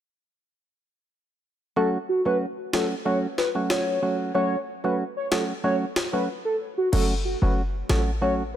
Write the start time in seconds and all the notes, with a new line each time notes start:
1.76 F#3 A3 C#4 F#4 A4
2.09 F#4
2.25 F#3 A3 C#4 F#4 B4
2.73 F#3 A3 C#4 F#4 A4, snare
3.05 F#3 A3 C#4 F#4 C#5
3.38 B4, snare
3.55 F#3 A3 C#4 F#4
3.70 C#5, cross-stick, snare
4.02 F#3 A3 C#4 F#4
4.34 F#3 A3 C#4 F#4 C#5
4.84 F#3 A3 C#4 F#4 B4
5.17 C#5
5.31 F#3 A3 C#4 F#4 A4, snare
5.64 F#3 A3 C#4 F#4 C#5
5.96 snare
6.13 F#3 A3 C#4 F#4 B4
6.45 A4
6.78 F#4
6.92 F#1 F#3 A3 C#4 F#4 A4, crash
7.25 F#4
7.42 F#1 F#3 A3 C#4 F#4 B4
7.89 A1 F#3 A3 C#4 F#4 A4, snare
8.21 F#3 A3 C#4 F#4 C#5